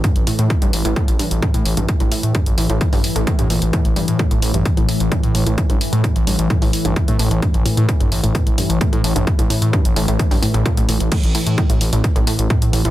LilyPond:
<<
  \new Staff \with { instrumentName = "Ambient pad" } { \clef bass \time 4/4 \key c \mixolydian \tempo 4 = 130 <a, e>1~ | <a, e>1~ | <a, e>1~ | <a, e>1~ |
<a, e>1~ | <a, e>1 | <a, e>1 | }
  \new Staff \with { instrumentName = "Synth arpeggio sound" } { \clef bass \time 4/4 \key c \mixolydian g,16 r16 a,16 a,16 r16 g,16 r16 a,16 a,16 r16 g,16 r16 a,16 a,16 r16 g,16 | r16 a,16 a,16 r16 g,16 r16 a,16 a,16 r16 g,16 r16 a,16 a,16 g,16 bes,16 r16 | a,16 r16 g,16 r16 a,16 a,16 r16 g,16 r16 a,16 a,16 r16 g,16 r16 a,16 a,16 | r16 g,16 r16 a,16 a,16 r16 g,16 r16 a,16 a,16 r16 g,16 r16 a,16 a,16 r16 |
g,16 r16 a,16 a,16 r16 g,16 r16 a,16 a,16 r16 g,16 r16 a,16 a,16 r16 g,16 | r16 a,16 a,16 r16 g,16 r16 a,16 a,16 r16 g,16 a,16 a,16 bes,16 a,16 a,16 r16 | a,16 r16 a,16 r16 a,16 a,16 r16 a,16 r16 a,16 a,16 r16 a,16 r16 a,16 a,16 | }
  \new Staff \with { instrumentName = "Analog synth bass" } { \clef bass \time 4/4 \key c \mixolydian r16 a,,16 r16 a,16 r16 a,,16 a,,16 a,,16 r16 a,,16 r16 a,,16 r16 a,16 a,,16 a,,16 | r16 a,,16 r16 a,16 r16 a,,16 a,,16 a,,16 r16 a,,16 r16 a,,16 r16 a,16 a,,16 a,,16 | r16 a,,16 r16 a,16 r16 a,,16 a,,16 a,,16 r16 a,,16 r16 a,,16 r16 a,16 a,,16 a,,16 | r16 a,,16 r16 a,16 r16 a,,16 a,,16 a,,16 r16 a,,16 r16 a,,16 r16 a,16 a,,16 a,,16 |
r16 a,,16 r16 a,16 r16 a,,16 a,,16 a,,16 r16 a,,16 r16 a,,16 r16 a,16 a,,16 a,,16 | r16 a,,16 r16 a,16 r16 a,,16 a,,16 a,,16 r16 a,,16 r16 a,,16 r16 a,,16 a,,16 a,,16 | r16 a,,16 r16 a,16 r16 a,,16 a,,16 a,,16 r16 a,,16 r16 a,,16 r16 a,16 a,,16 a,,16 | }
  \new DrumStaff \with { instrumentName = "Drums" } \drummode { \time 4/4 <hh bd>16 hh16 hho16 hh16 <hh bd>16 hh16 hho16 hh16 <hh bd>16 hh16 hho16 hh16 <hh bd>16 hh16 hho16 hh16 | <hh bd>16 hh16 hho16 hh16 <hh bd>16 hh16 hho16 hh16 <hh bd>16 hho16 hho16 hh16 <hh bd>16 hh16 hho16 hh16 | <hh bd>16 hh16 hho16 hh16 <hh bd>16 hh16 hho16 hh16 <hh bd>16 hh16 hho16 hh16 <hh bd>16 hh16 hho16 hh16 | <hh bd>16 hh16 hho16 hh16 <hh bd>16 hh16 hho16 hh16 <hh bd>16 hho16 hho16 hh16 <hh bd>16 hh16 hho16 hh16 |
<hh bd>16 hh16 hho16 hh16 <hh bd>16 hh16 hho16 hh16 <hh bd>16 hh16 hho16 hh16 <hh bd>16 hh16 hho16 hh16 | <hh bd>16 hh16 hho16 hh16 <hh bd>16 hh16 hho16 hh16 <hh bd>16 hho16 hho16 hh16 <hh bd>16 hh16 hho16 hh16 | <cymc hh bd>16 hh16 hho16 hh16 <hh bd>16 hh16 hho16 hh16 <hh bd>16 hh16 hho16 hh16 <hh bd>16 hh16 hho16 hh16 | }
>>